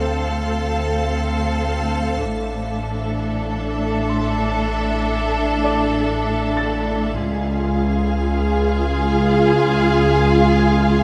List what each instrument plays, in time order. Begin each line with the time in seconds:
Already playing: double bass section D2, cello section D2, sub bass D2, viola section C4, ambient pad A4 C5 F5, violin section A4 F5, grand piano D5 D6
2.24 double bass section A1, sub bass A1, cello section A2, viola section D4, violin section A4 E5, ambient pad A4 D5 E5
4.09 grand piano C6
5.64 grand piano D5 D6
6.57 grand piano A6
7.18 sub bass C#2, cello section C#2, double bass section C#2, viola section F4, violin section G#4 F5, ambient pad G#4 F5
10.59 grand piano G#6